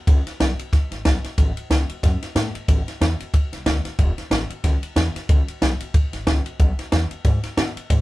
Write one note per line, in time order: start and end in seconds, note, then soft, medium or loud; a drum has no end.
0.07 0.25 C#2 loud
0.07 kick loud
0.07 ride loud
0.26 muted upright bass stroke medium
0.26 snare soft
0.26 ride medium
0.40 0.57 B1 medium
0.40 snare loud
0.40 ride medium
0.59 ride medium
0.73 0.90 B1 loud
0.73 kick loud
0.73 snare soft
0.73 ride medium
0.91 1.04 G#1 loud
0.91 snare soft
0.91 ride medium
1.05 1.23 B1 medium
1.05 kick medium
1.05 snare loud
1.05 ride medium
1.24 muted upright bass stroke medium
1.24 snare soft
1.24 ride medium
1.38 1.55 A1 medium
1.38 kick loud
1.38 ride medium
1.57 muted upright bass stroke medium
1.57 ride medium
1.70 1.87 C#2 medium
1.70 snare loud
1.70 ride medium
1.89 muted upright bass stroke medium
1.89 ride medium
2.03 2.20 F#2 loud
2.03 kick loud
2.03 snare soft
2.03 ride loud
2.22 muted upright bass stroke medium
2.22 snare soft
2.22 ride medium
2.35 2.53 A2 medium
2.35 snare loud
2.35 ride medium
2.55 muted upright bass stroke medium
2.55 ride medium
2.68 2.86 A1 medium
2.68 kick loud
2.68 ride loud
2.87 muted upright bass stroke medium
2.87 snare soft
2.87 ride medium
3.01 3.18 E2 medium
3.01 snare loud
3.01 ride medium
3.20 muted upright bass stroke medium
3.20 ride medium
3.33 3.51 E2 medium
3.33 kick loud
3.33 ride medium
3.53 3.65 C2 loud
3.53 snare soft
3.53 ride medium
3.66 3.83 D2 medium
3.66 kick medium
3.66 snare loud
3.66 ride medium
3.85 muted upright bass stroke medium
3.85 snare soft
3.85 ride medium
3.99 4.16 E1 loud
3.99 kick loud
3.99 ride medium
4.18 muted upright bass stroke medium
4.18 snare soft
4.18 ride medium
4.30 4.48 A1 medium
4.30 snare loud
4.30 ride medium
4.50 muted upright bass stroke medium
4.50 ride medium
4.64 4.81 C#2 loud
4.64 kick loud
4.64 snare soft
4.64 ride medium
4.82 muted upright bass stroke medium
4.82 ride medium
4.96 5.13 E2 medium
4.96 snare loud
4.96 ride medium
5.15 muted upright bass stroke medium
5.15 snare soft
5.15 ride medium
5.29 5.46 C#2 medium
5.29 kick loud
5.29 ride loud
5.47 muted upright bass stroke medium
5.47 ride medium
5.61 5.79 B1 medium
5.61 snare loud
5.61 ride medium
5.80 muted upright bass stroke medium
5.80 ride medium
5.94 6.11 B1 loud
5.94 kick loud
5.94 ride medium
6.13 6.26 G#1 loud
6.13 snare soft
6.13 ride medium
6.27 6.44 C#2 medium
6.27 kick medium
6.27 snare loud
6.27 ride medium
6.46 ride medium
6.59 6.77 B1 loud
6.59 kick loud
6.59 ride medium
6.79 muted upright bass stroke medium
6.79 snare soft
6.79 ride medium
6.92 7.09 E2 medium
6.92 snare loud
6.92 ride medium
7.11 muted upright bass stroke medium
7.11 ride medium
7.25 7.42 G#2 loud
7.25 kick loud
7.25 ride medium
7.43 muted upright bass stroke medium
7.43 snare soft
7.43 ride medium
7.57 7.74 B2 medium
7.57 snare loud
7.57 ride medium
7.76 muted upright bass stroke medium
7.76 ride medium
7.90 8.01 G#2 medium
7.90 kick loud
7.90 ride loud